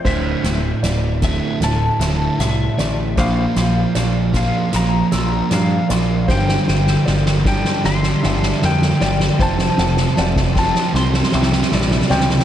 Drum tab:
CC |x-------------------------------|--------------------------------|--------------------------------|--------------------------------|
HH |----x---x---x---x---x---x---x---|x---x---x---x---x---x---x---x---|--------------------------------|--------------------------------|
SD |o---o---o---o---o---o---o---o---|o---o---o---o---o---o---o---o---|o-o-o-o-o-o-o-o-o-o-o-o-o-o-o-o-|o-o-o-o-o-o-o-o-o-oooooooooooooo|
BD |o-----------o-------------------|o-----------o-------------------|o-----------o-------------------|o---------o-o-------------------|